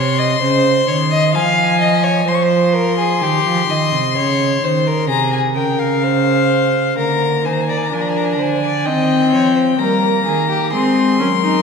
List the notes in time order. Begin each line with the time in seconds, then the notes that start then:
Already playing: C3 C#5 C6
0.18 D#5
0.41 C#3 C5
0.88 D#3 C#5
1.11 D#5
1.34 F3 F5 G#5
1.80 D#5
2.04 C#5
2.27 F3 C5 C6
2.35 C#6
2.42 C6
2.75 A#4
2.98 G#4
3.21 D#3 G4
3.45 F3
3.68 D#3 D#5
3.92 C3
4.15 C#3 C#5
4.62 D#3 C5
4.87 A#4
5.09 C3 G#4 A#5
5.32 G#5
5.55 C#3 A#4 G5
5.79 F5
6.03 C5
6.97 D3 A#3 A#4 A#5
7.45 D#3 C5 G#5
7.53 A#5
7.61 G#5
7.69 D5 A#5
7.77 G#5
7.85 A#5
7.92 F3 D4 A#4 G#5
8.01 A#5
8.09 G#5
8.17 A#5
8.25 G#5
8.33 A#5
8.39 D3 C5 G#5
8.62 D5
8.85 D#3 C4 D#5 G5
9.32 F3 C#5
9.55 C5
9.79 G3 A#3 A#4 A#5
10.26 D#3 G#4
10.49 G4
10.73 G#3 C4 G#4 C6
11.20 F#3 C#4 A#4
11.43 D#4